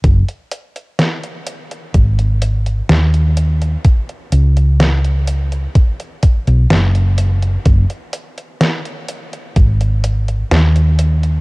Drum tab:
HH |xxxxxxxxxxxxxxxx|xxxxxxxxxxxxxxxx|xxxxxxxxxxxxxxxx|
SD |----o-------o---|----o-------o---|----o-------o---|
BD |o-------o-------|o-------o-o-----|o-------o-------|